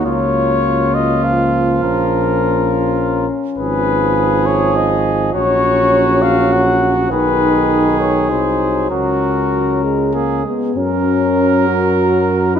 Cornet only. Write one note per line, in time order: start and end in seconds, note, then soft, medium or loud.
0.06 0.96 C#5 medium
0.94 1.26 D#5 medium
1.24 1.82 F5 medium
1.83 3.28 A#4 medium
3.58 4.48 B4 medium
4.46 4.78 C#5 medium
4.76 5.34 D#5 medium
5.35 6.24 C#5 medium
6.22 6.54 F5 medium
6.53 7.11 F#5 medium
7.12 7.98 B4 medium
8.00 8.29 C#5 medium
8.30 8.90 C5 medium
8.91 10.43 A#4 medium
10.76 12.58 A#4 medium
12.57 12.60 D#5 medium